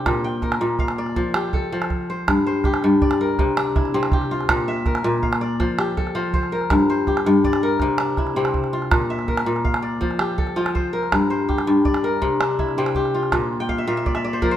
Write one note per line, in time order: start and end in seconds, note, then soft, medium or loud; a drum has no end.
0.00 0.10 C3 medium
0.00 1.49 C4 medium
0.00 0.81 D4 medium
0.00 0.86 E4 medium
0.00 1.29 G4 medium
0.06 0.60 A#2 medium
0.06 calabash thump medium
0.06 calabash click medium
0.15 calabash click soft
0.24 1.18 G5 medium
0.42 1.60 A#4 medium
0.42 calabash thump medium
0.42 calabash click soft
0.52 calabash click medium
0.61 1.21 A#2 medium
0.79 1.79 F5 medium
0.79 calabash thump medium
0.88 calabash click soft
0.98 2.09 D5 medium
1.06 calabash click soft
1.16 1.71 F3 medium
1.16 calabash thump medium
1.16 calabash click soft
1.34 2.64 G4 medium
1.34 calabash click medium
1.53 2.86 A4 medium
1.53 calabash thump medium
1.53 calabash click soft
1.72 2.32 F3 medium
1.82 calabash click soft
1.90 calabash thump medium
1.90 calabash click soft
2.10 2.46 C5 medium
2.28 2.83 G2 medium
2.28 calabash thump medium
2.28 calabash click medium
2.38 calabash click soft
2.47 3.65 C5 medium
2.64 4.06 G4 medium
2.64 calabash thump medium
2.64 calabash click soft
2.74 calabash click medium
2.83 3.43 G2 medium
2.83 calabash click soft
3.02 4.13 D5 medium
3.02 calabash thump medium
3.11 calabash click medium
3.21 4.48 A#4 medium
3.39 3.93 C3 medium
3.39 calabash thump medium
3.39 calabash click soft
3.57 5.25 D4 medium
3.57 calabash click medium
3.76 4.37 E4 medium
3.76 calabash thump medium
3.76 calabash click soft
3.85 calabash click soft
3.94 4.54 C3 medium
3.94 5.74 C4 medium
4.03 calabash click medium
4.12 5.54 G4 medium
4.12 calabash thump medium
4.21 calabash click soft
4.31 4.74 F4 medium
4.41 calabash click soft
4.49 5.03 A#2 medium
4.49 calabash thump medium
4.49 calabash click medium
4.58 calabash click soft
4.68 5.29 E5 medium
4.86 6.03 A#4 medium
4.86 calabash thump medium
4.86 calabash click soft
4.95 calabash click medium
5.04 5.65 A#2 medium
5.04 calabash click soft
5.23 6.22 F5 medium
5.23 calabash thump medium
5.33 calabash click medium
5.41 6.52 D5 medium
5.60 6.14 F3 medium
5.60 calabash thump medium
5.60 calabash click soft
5.79 7.07 G4 medium
5.79 calabash click medium
5.97 6.58 A4 medium
5.97 calabash thump medium
5.97 calabash click soft
6.07 calabash click soft
6.15 6.75 F3 medium
6.15 7.66 F4 medium
6.34 6.89 C5 medium
6.34 calabash thump medium
6.43 calabash click soft
6.52 7.63 A#4 medium
6.61 calabash click soft
6.70 7.25 G2 medium
6.70 calabash thump medium
6.70 calabash click medium
6.80 calabash click soft
6.90 8.08 C5 medium
7.07 8.49 G4 medium
7.07 calabash thump medium
7.07 calabash click soft
7.17 calabash click soft
7.26 7.86 G2 medium
7.26 calabash click soft
7.44 8.55 D5 medium
7.44 calabash thump medium
7.53 calabash click medium
7.63 8.90 A#4 medium
7.80 8.35 C3 medium
7.80 calabash thump medium
7.80 calabash click soft
7.98 9.68 D4 medium
7.98 calabash click medium
8.17 8.79 E4 medium
8.17 calabash thump medium
8.17 calabash click soft
8.27 calabash click soft
8.36 8.96 C3 medium
8.36 10.16 C4 medium
8.45 calabash click medium
8.54 calabash thump medium
8.64 calabash click soft
8.73 9.16 F4 medium
8.82 calabash click soft
8.91 9.45 A#2 medium
8.91 calabash thump medium
8.91 calabash click medium
9.00 calabash click soft
9.10 9.70 E5 medium
9.19 calabash click soft
9.28 10.44 A#4 medium
9.28 calabash thump medium
9.37 calabash click medium
9.46 10.07 A#2 medium
9.56 calabash click soft
9.64 10.64 F5 medium
9.64 calabash thump medium
9.74 calabash click medium
9.82 10.93 D5 medium
10.01 10.55 F3 medium
10.01 calabash thump medium
10.11 calabash click soft
10.19 11.48 G4 medium
10.19 calabash click medium
10.38 10.99 A4 medium
10.38 calabash thump medium
10.47 calabash click soft
10.56 11.17 F3 medium
10.56 12.08 F4 medium
10.56 calabash click soft
10.66 calabash click soft
10.75 11.30 C5 medium
10.75 calabash thump medium
10.93 12.04 A#4 medium
11.03 calabash click soft
11.12 11.66 G2 medium
11.12 calabash thump medium
11.12 calabash click medium
11.22 calabash click soft
11.30 12.49 C5 medium
11.49 12.90 G4 medium
11.49 calabash thump medium
11.49 calabash click soft
11.58 calabash click soft
11.67 12.27 G2 medium
11.67 calabash click soft
11.85 12.96 D5 medium
11.85 calabash thump medium
11.94 calabash click soft
12.04 13.31 A#4 medium
12.22 12.77 C3 medium
12.22 calabash thump medium
12.22 calabash click soft
12.40 14.08 D4 medium
12.40 calabash click medium
12.59 13.20 E4 medium
12.59 calabash thump medium
12.59 calabash click soft
12.69 calabash click soft
12.78 13.37 C3 medium
12.78 14.57 C4 medium
12.86 calabash click soft
12.95 14.37 G4 medium
12.95 calabash thump medium
13.05 calabash click soft
13.14 13.84 F4 medium
13.23 calabash click soft
13.32 13.86 A#2 medium
13.32 calabash thump medium
13.32 calabash click medium
13.41 calabash click soft
13.60 14.53 G5 medium
13.69 13.87 F5 medium
13.69 calabash thump medium
13.69 calabash click soft
13.78 13.97 E5 medium
13.87 14.47 A#2 medium
13.87 14.21 F5 medium
13.87 calabash click soft
13.97 14.15 E5 medium
14.06 14.24 D5 medium
14.06 calabash thump medium
14.15 14.48 E5 medium
14.15 calabash click soft
14.24 14.57 D5 medium
14.33 14.51 C5 medium
14.42 14.57 F3 medium
14.42 14.57 A#4 medium
14.42 calabash thump medium
14.42 calabash click soft
14.51 14.57 C5 medium